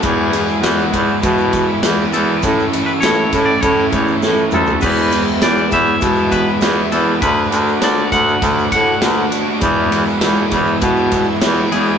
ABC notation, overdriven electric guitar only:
X:1
M:4/4
L:1/8
Q:1/4=100
K:Emix
V:1 name="Overdriven electric guitar"
[E,G,B,E] [E,G,B,E] [E,G,B,E] [E,G,B,E] [E,G,B,E] [E,G,B,E] [E,G,B,E] [E,G,B,E] | [A,,E,A,CE] [A,,E,A,CE] [A,,E,A,CE] [A,,E,A,CE] [A,,E,A,CE] [A,,E,A,CE] [A,,E,A,CE] [A,,E,A,CE] | [E,G,B,E] [E,G,B,E] [E,G,B,E] [E,G,B,E] [E,G,B,E] [E,G,B,E] [E,G,B,E] [E,G,B,E] | [D,A,DF] [D,A,DF] [D,A,DF] [D,A,DF] [D,A,DF] [D,A,DF] [D,A,DF] [D,A,DF] |
[E,G,B,E] [E,G,B,E] [E,G,B,E] [E,G,B,E] [E,G,B,E] [E,G,B,E] [E,G,B,E] [E,G,B,E] |]